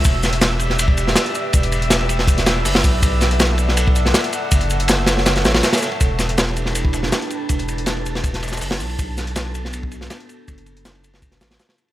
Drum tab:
RD |x---x-x-x---x---x---x---x---x---|x-x-x---x-x-x---x---x-------x---|x---x-x-x---x---x---x---x---x---|x-x-x---x-x-x---x---x-x-x-x-x-x-|
HH |------x-------------------x-----|--x---x-----------x-----o-------|------x-------------------x-----|--x---x-----------x-------------|
SH |x---x---x---x---x---x---x---x---|x---x---x---x---x---x---x---x---|x---x---x---x---x---x---x---x---|x---x---x---x---x---x---x-xxx---|
SD |----o---o-----o-----o-o-o-------|--------o-----o---o-o---o-o-----|----o---o-----o-----o-o-o-------|--------o---o-o-o-o-o-o-o-ooo---|
BD |o-----------------o-------------|o---------------o-----------o---|o-----------------o-------------|o-------------------------------|

RD |x---x-x-x---x---x---x---x---x---|x-x-x---x-x-x---x---x-------x-x-|x---x-x-x---x---x---x---x---x---|x-x-x---x-x-x---x---x-x-x-x-x-x-|
HH |------x-------------------x-----|--x---x-----------x-----o-------|------x-------------------x-----|--x---x-----------x-------------|
SH |x---x---x---x---x---x---x---x---|x---x---x---x---x---xxxxx---x---|x---x---x---x---x---x---x---x---|x---x---x---x---x---x---x---x---|
SD |----o---o-----o-----o-o-o-------|--------o-----o---o-ooooo-o-----|----o---o-----o-----o-o-o-------|--------o-----o---o-o-o-o-o-----|
BD |o-----------------o-------------|o---------------o---------------|o-----------------o-------------|o---------------o---------------|